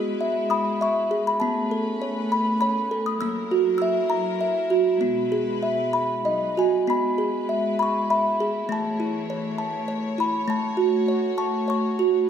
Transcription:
0.00 1.41 G#3 medium
0.00 0.81 B3 medium
0.00 1.41 E4 medium
0.00 1.10 G#4 medium
0.00 1.38 B4 medium
0.00 0.18 E6 medium
0.21 0.80 E5 medium
0.50 1.26 B5 medium
0.50 0.82 D#6 medium
0.81 1.42 E5 medium
0.81 1.29 C#6 medium
1.11 1.42 G#4 medium
1.27 1.43 B5 medium
1.40 3.18 A3 medium
1.40 2.61 B3 medium
1.40 3.19 C#4 medium
1.40 3.18 B4 medium
1.40 2.64 A5 medium
1.71 2.90 A4 medium
2.02 2.61 C#5 medium
2.32 2.59 B5 medium
2.61 3.21 C#5 medium
2.61 3.07 B5 medium
2.91 3.21 A4 medium
3.06 3.21 D#6 medium
3.21 4.99 F#3 medium
3.21 4.40 A#3 medium
3.21 6.22 E4 medium
3.21 4.99 A#4 medium
3.21 3.76 E6 loud
3.51 4.69 F#4 medium
3.78 4.39 E5 medium
3.78 6.19 E6 medium
4.10 5.00 A#5 medium
4.41 5.01 E5 medium
4.70 5.00 F#4 medium
5.00 6.23 B2 medium
5.00 6.23 G#3 medium
5.00 6.25 B3 medium
5.00 6.22 B4 medium
5.32 6.25 G#4 medium
5.63 6.25 E5 medium
5.93 6.25 B5 medium
6.23 6.86 F#3 medium
6.23 6.86 D#4 medium
6.23 6.86 B4 medium
6.23 6.87 D#5 medium
6.57 6.88 F#4 medium
6.57 6.89 G#5 medium
6.87 8.68 G#3 medium
6.87 8.10 B3 medium
6.87 10.45 E4 medium
6.87 8.68 B4 medium
6.87 7.78 B5 medium
7.18 8.39 G#4 medium
7.49 8.09 E5 medium
7.79 8.09 B5 medium
7.79 8.12 C#6 medium
8.10 8.70 E5 medium
8.10 8.72 B5 medium
8.40 8.70 G#4 medium
8.67 10.45 E3 medium
8.67 10.45 A3 medium
8.67 9.88 A3 medium
8.67 12.24 C#5 medium
8.72 9.57 A5 medium
9.00 10.17 E4 medium
9.30 9.87 C#5 medium
9.58 10.47 A5 medium
9.88 10.47 C#5 medium
10.18 10.48 E4 medium
10.18 10.50 B5 medium
10.47 12.26 A3 medium
10.47 11.67 A3 medium
10.47 12.26 F#4 medium
10.47 11.37 A5 medium
10.77 11.97 F#4 medium
11.08 11.67 C#5 medium
11.38 12.28 A5 medium
11.38 11.69 C#6 medium
11.68 12.28 C#5 medium
11.68 12.29 C#6 medium
11.99 12.29 F#4 medium

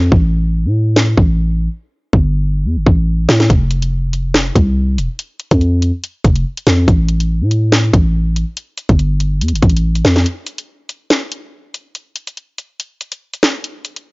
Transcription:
0.00 0.11 F2 loud
0.12 0.67 A1 loud
0.12 kick loud
0.65 1.15 A2 loud
0.96 snare loud
1.17 1.69 A1 loud
1.17 kick loud
2.13 2.67 G1 loud
2.13 kick medium
2.65 2.78 E2 loud
2.77 2.86 G1 loud
2.86 3.27 A1 medium
2.86 kick loud
3.29 3.49 A2 loud
3.29 snare loud
3.40 snare medium
3.50 4.52 F1 loud
3.50 kick loud
3.50 closed hi-hat medium
3.71 closed hi-hat medium
3.82 closed hi-hat medium
4.13 closed hi-hat medium
4.34 snare loud
4.55 4.99 C2 loud
4.55 kick loud
4.55 closed hi-hat medium
4.98 5.08 E1 loud
4.98 closed hi-hat medium
5.19 closed hi-hat medium
5.40 closed hi-hat medium
5.51 5.92 F2 loud
5.51 kick medium
5.51 closed hi-hat medium
5.61 closed hi-hat soft
5.82 closed hi-hat medium
6.04 closed hi-hat medium
6.25 6.45 F1 loud
6.25 kick loud
6.25 closed hi-hat medium
6.36 closed hi-hat medium
6.57 closed hi-hat medium
6.67 6.87 F2 loud
6.67 snare loud
6.67 open hi-hat medium
6.88 7.43 A1 loud
6.88 kick loud
6.88 closed hi-hat medium
7.09 closed hi-hat medium
7.20 closed hi-hat medium
7.41 7.91 A2 loud
7.51 closed hi-hat medium
7.72 snare loud
7.93 8.45 A1 loud
7.93 kick loud
7.93 closed hi-hat medium
8.36 closed hi-hat medium
8.57 closed hi-hat medium
8.78 closed hi-hat medium
8.89 9.43 G1 loud
8.89 kick medium
8.89 closed hi-hat medium
8.99 closed hi-hat medium
9.20 closed hi-hat medium
9.41 9.54 E2 loud
9.41 closed hi-hat medium
9.48 closed hi-hat medium
9.53 9.62 G1 loud
9.53 closed hi-hat medium
9.62 10.03 A1 loud
9.62 kick loud
9.62 closed hi-hat medium
9.70 closed hi-hat medium
9.77 closed hi-hat medium
9.95 closed hi-hat medium
10.05 10.26 F2 loud
10.05 snare loud
10.16 snare medium
10.26 closed hi-hat medium
10.47 closed hi-hat medium
10.58 closed hi-hat medium
10.89 closed hi-hat medium
11.10 snare loud
11.32 closed hi-hat medium
11.74 closed hi-hat medium
11.95 closed hi-hat medium
12.16 closed hi-hat medium
12.27 closed hi-hat medium
12.37 closed hi-hat soft
12.58 closed hi-hat medium
12.80 closed hi-hat medium
13.01 closed hi-hat medium
13.12 closed hi-hat medium
13.34 closed hi-hat medium
13.43 snare loud
13.43 open hi-hat medium
13.64 closed hi-hat medium
13.85 closed hi-hat medium
13.96 closed hi-hat medium

